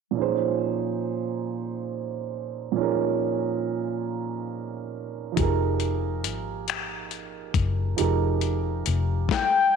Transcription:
0.11 2.70 A#2 medium
0.11 2.72 F3 medium
0.15 2.73 C#4 soft
0.15 2.74 D#4 soft
0.20 2.75 G#4 medium
0.20 2.76 C5 medium
2.72 5.31 A#2 medium
2.72 5.30 F3 medium
2.76 5.33 C#4 medium
2.76 5.33 D#4 medium
2.80 5.35 G#4 soft
2.80 5.37 A#4 medium
5.32 7.92 F3 medium
5.32 7.93 D#4 medium
5.37 6.26 F1 medium
5.37 7.94 G4 medium
5.37 7.96 G#4 medium
5.37 kick medium
5.37 closed hi-hat medium
5.42 7.97 A#4 medium
5.80 closed hi-hat soft
6.24 7.52 G#1 medium
6.24 closed hi-hat medium
6.68 finger snap medium
6.68 closed hi-hat medium
7.11 closed hi-hat soft
7.54 7.95 F#1 medium
7.54 kick medium
7.54 closed hi-hat medium
7.96 8.82 F1 medium
7.96 9.28 F3 medium
7.96 9.28 D#4 medium
7.96 9.29 G4 medium
7.96 9.30 G#4 medium
7.96 closed hi-hat medium
8.01 9.30 A#4 medium
8.41 closed hi-hat soft
8.86 9.26 F1 medium
8.86 closed hi-hat medium
9.29 9.76 G5 loud
9.29 kick medium
9.29 snare medium

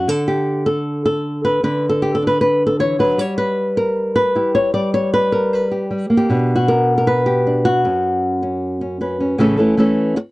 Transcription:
0.08 1.61 D3 medium
0.08 0.65 A4 medium
0.28 0.66 G4 medium
0.66 1.04 A4 medium
1.06 1.44 A4 medium
1.45 1.63 B4 medium
1.64 3.16 D3 medium
1.64 1.89 B4 medium
1.89 2.14 A4 medium
2.02 2.15 G4 medium
2.15 2.27 A4 medium
2.22 3.22 D4 soft
2.27 2.40 B4 medium
2.41 2.66 B4 medium
2.67 2.80 A4 medium
2.79 2.99 E3 soft
2.79 2.99 C#5 medium
2.99 3.19 F#3 medium
2.99 3.19 B4 medium
3.18 4.71 G3 medium
3.18 3.37 C#5 medium
3.38 4.14 B4 medium
3.77 4.35 A#4 medium
4.16 4.54 B4 medium
4.35 4.72 E4 soft
4.35 4.72 G4 soft
4.55 4.73 C#5 medium
4.74 5.89 G3 medium
4.74 4.93 D5 medium
4.94 5.13 C#5 medium
5.14 5.52 B4 medium
5.32 5.71 A#4 medium
5.53 6.30 B4 medium
5.71 6.16 G4 soft
5.91 6.09 G3 soft
6.10 6.29 A#3 medium
6.17 6.55 G4 medium
6.30 7.84 B2 medium
6.30 7.45 D4 soft
6.56 7.07 F#4 medium
6.68 6.96 A#4 medium
6.98 7.26 A#4 medium
7.07 7.65 B4 medium
7.26 7.65 G4 medium
7.47 7.82 D4 soft
7.65 9.00 F#4 medium
7.84 9.38 F#2 medium
7.84 8.41 C#4 soft
8.43 8.80 C#4 soft
8.81 9.00 C#4 soft
9.01 9.19 C#4 soft
9.01 9.37 B4 soft
9.20 9.39 C#4 soft
9.38 9.57 A2 medium
9.38 9.57 C#3 medium
9.38 9.58 E3 medium
9.38 9.58 A3 medium
9.38 9.57 C#4 medium
9.38 9.56 A4 medium
9.57 9.76 E3 soft
9.57 9.77 A3 soft
9.57 9.77 C#4 medium
9.57 9.77 A4 soft
9.77 10.15 E3 medium
9.77 10.16 A3 medium
9.77 10.16 C#4 medium
9.77 10.16 A4 medium
10.16 muted nylon-string guitar stroke medium

